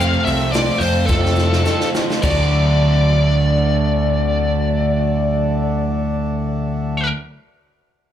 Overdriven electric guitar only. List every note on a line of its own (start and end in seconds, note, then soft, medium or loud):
0.00 0.52 F2 loud
0.00 0.53 C3 medium
0.00 0.27 F3 loud
0.00 0.26 A3 loud
0.00 0.25 C4 loud
0.00 0.24 F4 loud
0.25 0.51 F3 medium
0.25 0.52 A3 medium
0.25 0.53 C4 medium
0.25 0.54 F4 medium
0.52 0.81 F3 medium
0.52 0.81 A3 medium
0.52 0.79 C4 medium
0.52 0.78 F4 medium
0.79 1.07 F3 medium
0.79 1.08 A3 medium
0.79 1.08 C4 medium
0.79 1.09 F4 medium
1.07 1.64 F2 loud
1.07 1.64 C3 medium
1.07 1.36 F3 loud
1.07 1.35 A3 loud
1.07 1.34 C4 medium
1.07 1.33 F4 loud
1.34 1.62 F3 medium
1.34 1.63 A3 medium
1.34 1.64 C4 medium
1.34 1.65 F4 medium
1.63 2.20 F3 medium
1.63 2.20 A3 medium
1.63 2.21 C4 medium
1.63 2.21 F4 medium
2.21 7.11 D3 medium
2.21 7.12 F#3 loud
2.21 7.13 A3 loud
2.21 7.14 D4 loud
2.21 7.14 F#4 loud